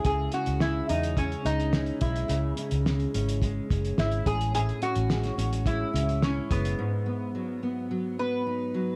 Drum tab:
HH |x-xx--xxxxxx-xxx|x-xx-xxxx-xx-xxx|xxxx-xxxx-xx--xx|----------------|
SD |----o-------o---|----o-------o---|----oo------o---|----------------|
BD |o-------o-----o-|--------o-o---o-|--------o-----o-|----------------|